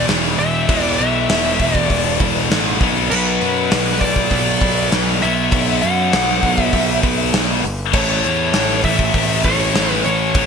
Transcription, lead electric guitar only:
0.39 E5
0.83 D5
0.98 E5
1.78 D5
3.10 B4
3.93 B4
4.00 D5
5.22 E5
5.82 F#5
6.62 E5
7.94 C#5
8.85 E5
9.45 C#5
9.92 B4
10.05 C#5

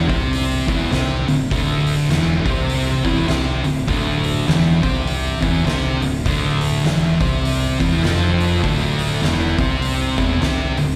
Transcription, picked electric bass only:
0.09 C2
0.68 E1
0.92 C2
1.26 D1
1.51 D1
2.09 E1
2.45 C2
3.05 E1
3.28 C2
3.65 D1
3.88 D1
4.47 E1
4.83 C2
5.42 E1
5.65 C2
5.99 D1
6.26 D1
6.84 E1
7.20 C2
7.80 E1
8.03 F1
8.64 D1
9.22 E1
9.58 C2
10.18 E1
10.41 C2
10.78 D1

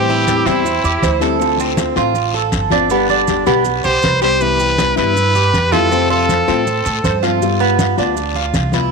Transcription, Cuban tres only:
0.10 E4
0.47 C4
0.85 G4
1.03 C5
1.22 A4
1.60 C4
1.97 F4
2.34 A4
2.72 D4
2.91 B3
3.10 D4
3.47 B3
3.85 G4
4.04 B4
4.22 G4
4.97 E4
5.35 G4
5.72 F4
5.91 C4
6.10 F4
6.48 C4
6.86 A4
7.05 C5
7.23 F4
7.60 B3
7.98 D4
8.36 F4
8.74 E4

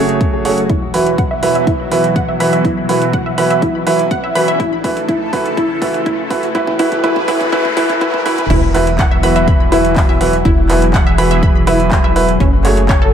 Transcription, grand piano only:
Already playing: A3 C#4 F#4 G#4 C#5
0.45 A3 C#4 F#4 G#4 C#5
0.94 E3 E4 F#4 B4
1.43 E3 E4 F#4 B4
1.91 E3 E4 F#4 B4
2.40 E3 E4 F#4 B4
2.89 E3 E4 F#4 B4
3.38 E3 E4 F#4 B4
3.87 E3 E4 F#4 B4
4.35 E3 E4 F#4 B4
4.84 E3 E4 F#4 B4
5.33 E3 E4 F#4 B4
5.82 E3 E4 F#4 B4
6.30 E3 E4 F#4 B4
6.55 E3 E4 F#4 B4
6.79 E3 E4 F#4 B4
7.04 E3 E4 F#4 B4
7.28 E3 E4 F#4 B4
7.52 E3 E4 F#4 B4
7.77 E3 E4 F#4 B4
8.01 E3 E4 F#4 B4
8.26 E3 E4 F#4 B4
8.74 E3 E4 F#4 B4
9.23 E3 E4 F#4 B4
9.72 E3 E4 F#4 B4
10.21 E3 E4 F#4 B4
10.70 E3 E4 F#4 B4
11.18 E3 E4 F#4 B4
11.67 E3 E4 F#4 B4
12.16 E4 F#4 B4
12.65 A3 C#4 F#4 G#4 C#5

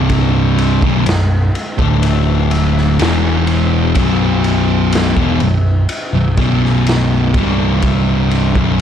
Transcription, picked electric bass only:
Already playing: C1
0.82 B0
1.08 B0
1.79 D1
3.00 E1
3.96 B0
5.17 E1
5.41 B0
6.13 B0
6.37 B0
7.34 C1
8.55 B0

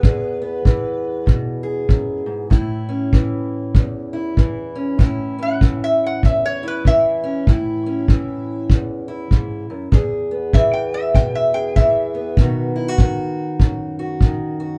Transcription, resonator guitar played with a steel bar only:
Already playing: B4
5.43 F#5
5.84 E5
6.06 F#5
6.25 E5
6.46 C#5
6.68 B4
6.87 E5
10.54 E5
10.73 G5
10.94 E5
11.15 G5
11.35 E5
11.54 G5
11.76 E5

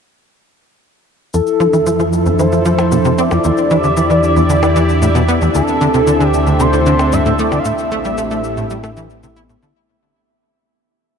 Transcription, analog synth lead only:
1.34 A4
2.39 C5
3.19 D5
5.55 A4
6.26 G4
6.61 C5
7.13 E5
7.39 D5
7.59 F5
7.66 E5

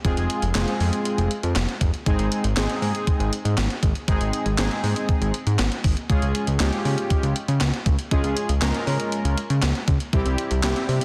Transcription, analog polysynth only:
0.05 G#3 C4 F4 G#4
0.55 G#3 C4 F4 G#4
2.06 G#3 C4 D#4 G#4
2.57 G#3 C4 D#4 G#4
4.08 G#3 C4 D#4 G#4
4.58 G#3 C4 D#4 G#4
6.10 G#3 C#4 F4 G#4
6.60 G#3 C#4 F4 G4
8.11 G#3 C#4 F4 G#4
8.62 G#3 C#4 F4 A#4
10.13 G3 C4 E4 G4
10.63 G3 C4 E4 G4

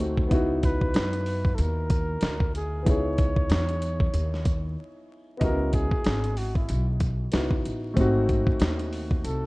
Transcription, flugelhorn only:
0.65 B4
1.55 A4
1.61 A#4
2.56 G#4
2.89 C#5
5.43 A#4
5.74 G#4
6.37 F#4
6.55 E4
9.24 A4

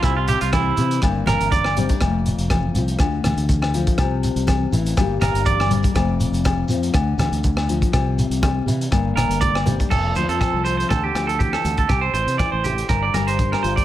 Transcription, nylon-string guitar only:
0.04 C3 C4
0.78 E3 C4
1.03 G2 A#3
1.77 G3 C4
1.91 D4
2.03 F2 A3
2.76 F3 C4
3.01 D3 A3
3.74 F3 D4
3.99 C3 C4
4.72 E3 E4
4.98 G2 G3 A#3 D4 G4
5.69 G3 C4
5.83 D4
5.94 F2 A3 C4 A4, muted nylon-string guitar stroke
6.68 F3 C4
6.93 D3 A3
7.68 F3 D4
7.92 C3 C4
8.67 E3 E4
8.91 G2 A#3
9.66 G3 C4
9.79 D4
9.91 F2
10.17 F3
10.42 C4
10.65 A4
10.90 D3
11.15 F3
11.39 E3
11.64 D3
11.89 C3
12.14 E3
12.41 E4
12.65 A4
12.89 G2
13.15 G3
13.39 D4
13.63 F4
13.77 G4

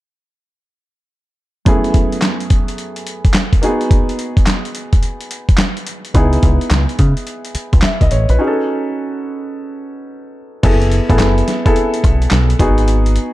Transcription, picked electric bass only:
6.15 C#2
6.43 C#2
6.71 C#2
6.99 C#3
7.55 muted picked electric bass stroke
7.73 C#2
8.01 C#2
8.11 A1
8.29 A#1
10.64 F#1
11.10 A1
11.20 F#1
12.04 B1
12.32 B1
12.60 G#1

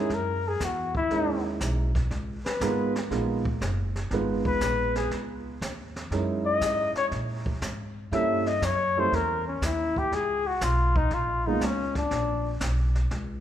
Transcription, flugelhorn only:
Already playing: G#4
0.14 A#4
0.48 G#4
0.65 F#4
0.97 E4
2.46 B4
2.97 G#4
4.47 B4
4.97 G#4
6.46 D#5
6.98 C#5
8.14 E5
8.47 D#5
8.65 C#5
9.00 C5
9.15 A#4
9.47 C#4
9.65 E4
9.99 G4
10.15 G#4
10.47 F#4
10.64 F4
10.97 D#4
11.14 F4
11.47 D#4
11.65 C#4
11.98 D4

